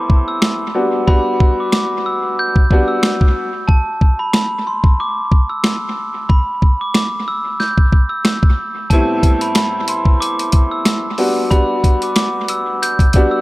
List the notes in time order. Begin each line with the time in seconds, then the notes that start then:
Already playing: A2 G3 B3 C4 E4 D6
0.10 kick
0.28 E6
0.42 cross-stick, snare
0.75 G3 B3 D4 F#4
1.07 G3 B3 D4 F#4 B5, kick
1.40 kick
1.60 D6
1.72 D6, cross-stick, snare
2.06 E6
2.39 G6
2.56 kick
2.71 G3 B3 D4 F#4, kick
2.88 E6
3.03 cross-stick, snare
3.21 kick
3.68 A5, kick
4.01 kick
4.19 B5
4.33 B5, cross-stick, snare
4.67 C6
4.84 kick
5.00 D6
5.32 kick
5.49 E6
5.64 cross-stick, snare
6.29 B5, kick
6.62 kick
6.81 D6
6.94 D6, cross-stick, snare
7.28 E6
7.60 G6, snare
7.78 kick
7.93 kick
8.09 E6
8.25 cross-stick, snare
8.43 kick
8.90 A2 G3 B3 C4 E4 A5, kick, closed hi-hat
9.23 kick, closed hi-hat
9.41 B5, closed hi-hat
9.55 B5, cross-stick, snare, closed hi-hat
9.88 C6, closed hi-hat
10.05 kick
10.20 D6, closed hi-hat
10.39 closed hi-hat
10.52 kick, closed hi-hat
10.71 E6
10.85 cross-stick, snare, closed hi-hat
11.18 G3 B3 D4 F#4, open hi-hat
11.51 G3 B3 D4 F#4 B5, kick, closed hi-hat
11.84 kick, closed hi-hat
12.02 D6, closed hi-hat
12.16 D6, cross-stick, snare, closed hi-hat
12.48 E6, closed hi-hat
12.83 G6, closed hi-hat
12.99 kick, closed hi-hat
13.13 G3 B3 D4 F#4, kick, closed hi-hat
13.31 E6